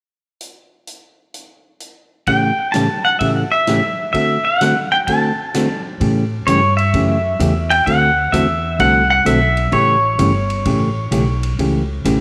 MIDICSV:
0, 0, Header, 1, 5, 480
1, 0, Start_track
1, 0, Tempo, 465839
1, 418, Time_signature, 4, 2, 24, 8
1, 12579, End_track
2, 0, Start_track
2, 0, Title_t, "Pedal steel guitar"
2, 0, Program_c, 0, 26
2, 2345, Note_on_c, 0, 79, 86
2, 2803, Note_on_c, 0, 81, 92
2, 2839, Note_off_c, 0, 79, 0
2, 3135, Note_off_c, 0, 81, 0
2, 3139, Note_on_c, 0, 78, 81
2, 3287, Note_on_c, 0, 76, 87
2, 3307, Note_off_c, 0, 78, 0
2, 3375, Note_off_c, 0, 76, 0
2, 3622, Note_on_c, 0, 76, 86
2, 4240, Note_off_c, 0, 76, 0
2, 4253, Note_on_c, 0, 76, 84
2, 4582, Note_on_c, 0, 78, 88
2, 4587, Note_off_c, 0, 76, 0
2, 5063, Note_off_c, 0, 78, 0
2, 5068, Note_on_c, 0, 79, 79
2, 5119, Note_off_c, 0, 79, 0
2, 5226, Note_on_c, 0, 81, 81
2, 5983, Note_off_c, 0, 81, 0
2, 6663, Note_on_c, 0, 73, 82
2, 6970, Note_off_c, 0, 73, 0
2, 6974, Note_on_c, 0, 76, 90
2, 7939, Note_on_c, 0, 79, 99
2, 7967, Note_off_c, 0, 76, 0
2, 8091, Note_off_c, 0, 79, 0
2, 8102, Note_on_c, 0, 78, 95
2, 8577, Note_on_c, 0, 76, 88
2, 8597, Note_off_c, 0, 78, 0
2, 9026, Note_off_c, 0, 76, 0
2, 9069, Note_on_c, 0, 78, 105
2, 9368, Note_off_c, 0, 78, 0
2, 9381, Note_on_c, 0, 78, 96
2, 9532, Note_off_c, 0, 78, 0
2, 9543, Note_on_c, 0, 76, 103
2, 10026, Note_on_c, 0, 73, 77
2, 10037, Note_off_c, 0, 76, 0
2, 11898, Note_off_c, 0, 73, 0
2, 12579, End_track
3, 0, Start_track
3, 0, Title_t, "Hollow-body jazz guitar"
3, 0, Program_c, 1, 26
3, 2344, Note_on_c, 1, 45, 53
3, 2348, Note_on_c, 1, 49, 54
3, 2348, Note_on_c, 1, 52, 51
3, 2352, Note_on_c, 1, 57, 56
3, 2355, Note_on_c, 1, 61, 58
3, 2358, Note_on_c, 1, 67, 62
3, 2575, Note_off_c, 1, 45, 0
3, 2577, Note_off_c, 1, 49, 0
3, 2578, Note_off_c, 1, 52, 0
3, 2579, Note_off_c, 1, 57, 0
3, 2581, Note_off_c, 1, 61, 0
3, 2582, Note_off_c, 1, 67, 0
3, 2829, Note_on_c, 1, 45, 73
3, 2833, Note_on_c, 1, 52, 79
3, 2835, Note_on_c, 1, 49, 76
3, 2835, Note_on_c, 1, 57, 76
3, 2840, Note_on_c, 1, 67, 74
3, 2842, Note_on_c, 1, 61, 76
3, 2949, Note_off_c, 1, 45, 0
3, 2951, Note_off_c, 1, 52, 0
3, 2952, Note_off_c, 1, 49, 0
3, 2952, Note_off_c, 1, 57, 0
3, 2954, Note_off_c, 1, 67, 0
3, 2955, Note_off_c, 1, 61, 0
3, 3301, Note_on_c, 1, 45, 59
3, 3303, Note_on_c, 1, 49, 56
3, 3307, Note_on_c, 1, 57, 63
3, 3308, Note_on_c, 1, 52, 55
3, 3313, Note_on_c, 1, 61, 64
3, 3313, Note_on_c, 1, 67, 62
3, 3535, Note_off_c, 1, 45, 0
3, 3536, Note_off_c, 1, 49, 0
3, 3538, Note_off_c, 1, 52, 0
3, 3538, Note_off_c, 1, 57, 0
3, 3541, Note_off_c, 1, 61, 0
3, 3541, Note_off_c, 1, 67, 0
3, 3787, Note_on_c, 1, 45, 77
3, 3791, Note_on_c, 1, 52, 78
3, 3792, Note_on_c, 1, 61, 81
3, 3793, Note_on_c, 1, 49, 73
3, 3795, Note_on_c, 1, 57, 73
3, 3798, Note_on_c, 1, 67, 84
3, 3908, Note_off_c, 1, 45, 0
3, 3911, Note_off_c, 1, 52, 0
3, 3911, Note_off_c, 1, 61, 0
3, 3912, Note_off_c, 1, 49, 0
3, 3913, Note_off_c, 1, 57, 0
3, 3914, Note_off_c, 1, 67, 0
3, 4262, Note_on_c, 1, 50, 53
3, 4266, Note_on_c, 1, 60, 54
3, 4267, Note_on_c, 1, 57, 54
3, 4268, Note_on_c, 1, 66, 67
3, 4273, Note_on_c, 1, 69, 62
3, 4496, Note_off_c, 1, 50, 0
3, 4498, Note_off_c, 1, 60, 0
3, 4499, Note_off_c, 1, 57, 0
3, 4499, Note_off_c, 1, 66, 0
3, 4502, Note_off_c, 1, 69, 0
3, 4752, Note_on_c, 1, 50, 73
3, 4755, Note_on_c, 1, 57, 78
3, 4757, Note_on_c, 1, 60, 74
3, 4759, Note_on_c, 1, 66, 85
3, 4763, Note_on_c, 1, 69, 80
3, 4871, Note_off_c, 1, 50, 0
3, 4873, Note_off_c, 1, 57, 0
3, 4874, Note_off_c, 1, 60, 0
3, 4875, Note_off_c, 1, 66, 0
3, 4877, Note_off_c, 1, 69, 0
3, 5237, Note_on_c, 1, 50, 53
3, 5245, Note_on_c, 1, 57, 58
3, 5247, Note_on_c, 1, 66, 56
3, 5249, Note_on_c, 1, 60, 63
3, 5249, Note_on_c, 1, 69, 64
3, 5464, Note_off_c, 1, 50, 0
3, 5468, Note_off_c, 1, 57, 0
3, 5469, Note_off_c, 1, 66, 0
3, 5470, Note_off_c, 1, 60, 0
3, 5470, Note_off_c, 1, 69, 0
3, 5712, Note_on_c, 1, 50, 75
3, 5715, Note_on_c, 1, 57, 78
3, 5718, Note_on_c, 1, 66, 83
3, 5719, Note_on_c, 1, 60, 80
3, 5723, Note_on_c, 1, 69, 80
3, 5832, Note_off_c, 1, 50, 0
3, 5834, Note_off_c, 1, 57, 0
3, 5835, Note_off_c, 1, 66, 0
3, 5836, Note_off_c, 1, 60, 0
3, 5837, Note_off_c, 1, 69, 0
3, 6184, Note_on_c, 1, 49, 61
3, 6190, Note_on_c, 1, 52, 59
3, 6191, Note_on_c, 1, 57, 65
3, 6193, Note_on_c, 1, 61, 60
3, 6199, Note_on_c, 1, 67, 68
3, 6417, Note_off_c, 1, 49, 0
3, 6420, Note_off_c, 1, 52, 0
3, 6421, Note_off_c, 1, 57, 0
3, 6422, Note_off_c, 1, 61, 0
3, 6425, Note_off_c, 1, 67, 0
3, 6671, Note_on_c, 1, 49, 77
3, 6674, Note_on_c, 1, 52, 79
3, 6677, Note_on_c, 1, 57, 74
3, 6682, Note_on_c, 1, 61, 83
3, 6684, Note_on_c, 1, 67, 89
3, 6791, Note_off_c, 1, 49, 0
3, 6793, Note_off_c, 1, 52, 0
3, 6794, Note_off_c, 1, 57, 0
3, 6797, Note_off_c, 1, 61, 0
3, 6798, Note_off_c, 1, 67, 0
3, 7151, Note_on_c, 1, 49, 57
3, 7160, Note_on_c, 1, 52, 56
3, 7160, Note_on_c, 1, 57, 65
3, 7162, Note_on_c, 1, 67, 58
3, 7166, Note_on_c, 1, 61, 66
3, 7381, Note_off_c, 1, 49, 0
3, 7385, Note_off_c, 1, 52, 0
3, 7385, Note_off_c, 1, 57, 0
3, 7386, Note_off_c, 1, 67, 0
3, 7388, Note_off_c, 1, 61, 0
3, 7624, Note_on_c, 1, 49, 76
3, 7624, Note_on_c, 1, 52, 86
3, 7628, Note_on_c, 1, 57, 83
3, 7633, Note_on_c, 1, 67, 86
3, 7634, Note_on_c, 1, 61, 90
3, 7748, Note_off_c, 1, 49, 0
3, 7748, Note_off_c, 1, 52, 0
3, 7750, Note_off_c, 1, 57, 0
3, 7752, Note_off_c, 1, 67, 0
3, 7753, Note_off_c, 1, 61, 0
3, 8109, Note_on_c, 1, 50, 56
3, 8111, Note_on_c, 1, 57, 66
3, 8114, Note_on_c, 1, 60, 56
3, 8118, Note_on_c, 1, 69, 62
3, 8121, Note_on_c, 1, 66, 60
3, 8340, Note_off_c, 1, 50, 0
3, 8340, Note_off_c, 1, 57, 0
3, 8342, Note_off_c, 1, 60, 0
3, 8344, Note_off_c, 1, 69, 0
3, 8345, Note_off_c, 1, 66, 0
3, 8583, Note_on_c, 1, 50, 82
3, 8587, Note_on_c, 1, 57, 79
3, 8590, Note_on_c, 1, 60, 74
3, 8592, Note_on_c, 1, 66, 89
3, 8597, Note_on_c, 1, 69, 84
3, 8707, Note_off_c, 1, 50, 0
3, 8709, Note_off_c, 1, 57, 0
3, 8710, Note_off_c, 1, 60, 0
3, 8711, Note_off_c, 1, 66, 0
3, 8714, Note_off_c, 1, 69, 0
3, 9053, Note_on_c, 1, 50, 57
3, 9061, Note_on_c, 1, 57, 59
3, 9061, Note_on_c, 1, 60, 65
3, 9064, Note_on_c, 1, 66, 61
3, 9071, Note_on_c, 1, 69, 61
3, 9290, Note_off_c, 1, 50, 0
3, 9295, Note_off_c, 1, 57, 0
3, 9295, Note_off_c, 1, 60, 0
3, 9296, Note_off_c, 1, 66, 0
3, 9299, Note_off_c, 1, 69, 0
3, 9528, Note_on_c, 1, 50, 78
3, 9535, Note_on_c, 1, 57, 76
3, 9540, Note_on_c, 1, 60, 83
3, 9541, Note_on_c, 1, 66, 82
3, 9541, Note_on_c, 1, 69, 82
3, 9659, Note_off_c, 1, 50, 0
3, 9662, Note_off_c, 1, 57, 0
3, 9664, Note_off_c, 1, 60, 0
3, 9665, Note_off_c, 1, 66, 0
3, 9665, Note_off_c, 1, 69, 0
3, 10013, Note_on_c, 1, 49, 54
3, 10021, Note_on_c, 1, 52, 58
3, 10025, Note_on_c, 1, 57, 60
3, 10026, Note_on_c, 1, 61, 59
3, 10030, Note_on_c, 1, 67, 67
3, 10249, Note_off_c, 1, 49, 0
3, 10254, Note_off_c, 1, 52, 0
3, 10256, Note_off_c, 1, 57, 0
3, 10256, Note_off_c, 1, 61, 0
3, 10258, Note_off_c, 1, 67, 0
3, 10494, Note_on_c, 1, 49, 78
3, 10497, Note_on_c, 1, 52, 87
3, 10498, Note_on_c, 1, 57, 78
3, 10502, Note_on_c, 1, 61, 88
3, 10503, Note_on_c, 1, 67, 81
3, 10621, Note_off_c, 1, 49, 0
3, 10622, Note_off_c, 1, 52, 0
3, 10622, Note_off_c, 1, 57, 0
3, 10625, Note_off_c, 1, 61, 0
3, 10625, Note_off_c, 1, 67, 0
3, 10981, Note_on_c, 1, 49, 61
3, 10983, Note_on_c, 1, 57, 68
3, 10986, Note_on_c, 1, 52, 63
3, 10986, Note_on_c, 1, 61, 71
3, 10993, Note_on_c, 1, 67, 68
3, 11213, Note_off_c, 1, 49, 0
3, 11213, Note_off_c, 1, 57, 0
3, 11215, Note_off_c, 1, 52, 0
3, 11215, Note_off_c, 1, 61, 0
3, 11218, Note_off_c, 1, 67, 0
3, 11448, Note_on_c, 1, 49, 78
3, 11456, Note_on_c, 1, 57, 83
3, 11457, Note_on_c, 1, 67, 89
3, 11458, Note_on_c, 1, 52, 81
3, 11461, Note_on_c, 1, 61, 81
3, 11576, Note_off_c, 1, 49, 0
3, 11580, Note_off_c, 1, 57, 0
3, 11581, Note_off_c, 1, 52, 0
3, 11581, Note_off_c, 1, 67, 0
3, 11583, Note_off_c, 1, 61, 0
3, 11944, Note_on_c, 1, 49, 58
3, 11948, Note_on_c, 1, 57, 68
3, 11950, Note_on_c, 1, 52, 61
3, 11954, Note_on_c, 1, 67, 61
3, 11956, Note_on_c, 1, 61, 63
3, 12172, Note_off_c, 1, 49, 0
3, 12174, Note_off_c, 1, 57, 0
3, 12175, Note_off_c, 1, 52, 0
3, 12178, Note_off_c, 1, 61, 0
3, 12178, Note_off_c, 1, 67, 0
3, 12415, Note_on_c, 1, 49, 81
3, 12420, Note_on_c, 1, 52, 82
3, 12420, Note_on_c, 1, 57, 81
3, 12424, Note_on_c, 1, 67, 86
3, 12425, Note_on_c, 1, 61, 89
3, 12538, Note_off_c, 1, 49, 0
3, 12540, Note_off_c, 1, 52, 0
3, 12541, Note_off_c, 1, 57, 0
3, 12543, Note_off_c, 1, 61, 0
3, 12543, Note_off_c, 1, 67, 0
3, 12579, End_track
4, 0, Start_track
4, 0, Title_t, "Upright bass"
4, 0, Program_c, 2, 32
4, 6187, Note_on_c, 2, 45, 81
4, 6652, Note_off_c, 2, 45, 0
4, 6663, Note_on_c, 2, 43, 82
4, 7130, Note_off_c, 2, 43, 0
4, 7148, Note_on_c, 2, 42, 82
4, 7612, Note_off_c, 2, 42, 0
4, 7618, Note_on_c, 2, 40, 88
4, 8087, Note_off_c, 2, 40, 0
4, 8105, Note_on_c, 2, 38, 81
4, 8570, Note_off_c, 2, 38, 0
4, 8579, Note_on_c, 2, 40, 88
4, 9047, Note_off_c, 2, 40, 0
4, 9061, Note_on_c, 2, 36, 86
4, 9528, Note_off_c, 2, 36, 0
4, 9534, Note_on_c, 2, 35, 93
4, 10003, Note_off_c, 2, 35, 0
4, 10014, Note_on_c, 2, 33, 86
4, 10483, Note_off_c, 2, 33, 0
4, 10493, Note_on_c, 2, 31, 85
4, 10961, Note_off_c, 2, 31, 0
4, 10979, Note_on_c, 2, 33, 83
4, 11444, Note_off_c, 2, 33, 0
4, 11452, Note_on_c, 2, 35, 91
4, 11920, Note_off_c, 2, 35, 0
4, 11938, Note_on_c, 2, 37, 81
4, 12402, Note_off_c, 2, 37, 0
4, 12411, Note_on_c, 2, 33, 88
4, 12579, Note_off_c, 2, 33, 0
4, 12579, End_track
5, 0, Start_track
5, 0, Title_t, "Drums"
5, 418, Note_on_c, 9, 42, 52
5, 521, Note_off_c, 9, 42, 0
5, 898, Note_on_c, 9, 42, 51
5, 1001, Note_off_c, 9, 42, 0
5, 1381, Note_on_c, 9, 42, 55
5, 1484, Note_off_c, 9, 42, 0
5, 1857, Note_on_c, 9, 42, 50
5, 1960, Note_off_c, 9, 42, 0
5, 2338, Note_on_c, 9, 51, 53
5, 2339, Note_on_c, 9, 36, 32
5, 2441, Note_off_c, 9, 51, 0
5, 2442, Note_off_c, 9, 36, 0
5, 2821, Note_on_c, 9, 38, 57
5, 2821, Note_on_c, 9, 44, 49
5, 2821, Note_on_c, 9, 51, 57
5, 2924, Note_off_c, 9, 38, 0
5, 2924, Note_off_c, 9, 44, 0
5, 2924, Note_off_c, 9, 51, 0
5, 3302, Note_on_c, 9, 36, 34
5, 3302, Note_on_c, 9, 51, 55
5, 3405, Note_off_c, 9, 36, 0
5, 3405, Note_off_c, 9, 51, 0
5, 3784, Note_on_c, 9, 38, 63
5, 3784, Note_on_c, 9, 44, 54
5, 3784, Note_on_c, 9, 51, 57
5, 3887, Note_off_c, 9, 38, 0
5, 3887, Note_off_c, 9, 44, 0
5, 3887, Note_off_c, 9, 51, 0
5, 4266, Note_on_c, 9, 36, 31
5, 4270, Note_on_c, 9, 51, 54
5, 4369, Note_off_c, 9, 36, 0
5, 4373, Note_off_c, 9, 51, 0
5, 4749, Note_on_c, 9, 38, 61
5, 4749, Note_on_c, 9, 44, 54
5, 4749, Note_on_c, 9, 51, 56
5, 4852, Note_off_c, 9, 38, 0
5, 4852, Note_off_c, 9, 44, 0
5, 4852, Note_off_c, 9, 51, 0
5, 5230, Note_on_c, 9, 36, 31
5, 5231, Note_on_c, 9, 51, 58
5, 5333, Note_off_c, 9, 36, 0
5, 5334, Note_off_c, 9, 51, 0
5, 5713, Note_on_c, 9, 38, 63
5, 5713, Note_on_c, 9, 44, 64
5, 5713, Note_on_c, 9, 51, 68
5, 5816, Note_off_c, 9, 38, 0
5, 5816, Note_off_c, 9, 44, 0
5, 5816, Note_off_c, 9, 51, 0
5, 6189, Note_on_c, 9, 36, 33
5, 6191, Note_on_c, 9, 51, 57
5, 6292, Note_off_c, 9, 36, 0
5, 6294, Note_off_c, 9, 51, 0
5, 6672, Note_on_c, 9, 44, 58
5, 6672, Note_on_c, 9, 51, 63
5, 6775, Note_off_c, 9, 44, 0
5, 6775, Note_off_c, 9, 51, 0
5, 6990, Note_on_c, 9, 51, 44
5, 7093, Note_off_c, 9, 51, 0
5, 7148, Note_on_c, 9, 36, 33
5, 7148, Note_on_c, 9, 51, 61
5, 7251, Note_off_c, 9, 36, 0
5, 7251, Note_off_c, 9, 51, 0
5, 7627, Note_on_c, 9, 44, 54
5, 7627, Note_on_c, 9, 51, 63
5, 7730, Note_off_c, 9, 44, 0
5, 7730, Note_off_c, 9, 51, 0
5, 7946, Note_on_c, 9, 51, 48
5, 8049, Note_off_c, 9, 51, 0
5, 8107, Note_on_c, 9, 36, 34
5, 8111, Note_on_c, 9, 51, 61
5, 8210, Note_off_c, 9, 36, 0
5, 8214, Note_off_c, 9, 51, 0
5, 8589, Note_on_c, 9, 44, 59
5, 8589, Note_on_c, 9, 51, 65
5, 8692, Note_off_c, 9, 44, 0
5, 8692, Note_off_c, 9, 51, 0
5, 9062, Note_on_c, 9, 36, 33
5, 9063, Note_on_c, 9, 51, 62
5, 9165, Note_off_c, 9, 36, 0
5, 9166, Note_off_c, 9, 51, 0
5, 9543, Note_on_c, 9, 44, 56
5, 9543, Note_on_c, 9, 51, 65
5, 9646, Note_off_c, 9, 44, 0
5, 9646, Note_off_c, 9, 51, 0
5, 9859, Note_on_c, 9, 51, 49
5, 9962, Note_off_c, 9, 51, 0
5, 10016, Note_on_c, 9, 51, 55
5, 10017, Note_on_c, 9, 36, 33
5, 10119, Note_off_c, 9, 51, 0
5, 10120, Note_off_c, 9, 36, 0
5, 10498, Note_on_c, 9, 44, 49
5, 10498, Note_on_c, 9, 51, 65
5, 10601, Note_off_c, 9, 44, 0
5, 10601, Note_off_c, 9, 51, 0
5, 10817, Note_on_c, 9, 51, 47
5, 10920, Note_off_c, 9, 51, 0
5, 10978, Note_on_c, 9, 36, 33
5, 10978, Note_on_c, 9, 51, 65
5, 11081, Note_off_c, 9, 36, 0
5, 11081, Note_off_c, 9, 51, 0
5, 11456, Note_on_c, 9, 44, 53
5, 11456, Note_on_c, 9, 51, 69
5, 11559, Note_off_c, 9, 44, 0
5, 11559, Note_off_c, 9, 51, 0
5, 11778, Note_on_c, 9, 51, 51
5, 11881, Note_off_c, 9, 51, 0
5, 11941, Note_on_c, 9, 36, 33
5, 11944, Note_on_c, 9, 51, 59
5, 12044, Note_off_c, 9, 36, 0
5, 12047, Note_off_c, 9, 51, 0
5, 12420, Note_on_c, 9, 44, 58
5, 12420, Note_on_c, 9, 51, 69
5, 12523, Note_off_c, 9, 44, 0
5, 12523, Note_off_c, 9, 51, 0
5, 12579, End_track
0, 0, End_of_file